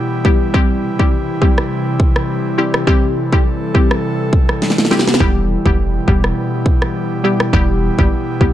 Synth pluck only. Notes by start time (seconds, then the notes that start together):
0.25 G3 B3 E4 G4
0.54 G3 C4 E4 G4
0.99 G3 C4 E4 G4
1.41 G3 C4 E4 G4
2.58 G3 C4 E4 G4
2.87 G3 C4 E4 G4
3.32 G3 C4 E4 G4
3.74 G3 C4 E4 G4
4.91 G3 C4 E4 G4
5.20 G3 B3 E4 G4
5.65 G3 B3 E4 G4
6.07 G3 B3 E4 G4
7.24 G3 B3 E4 G4
7.53 G3 B3 E4 G4
7.99 G3 B3 E4 G4
8.41 G3 B3 E4 G4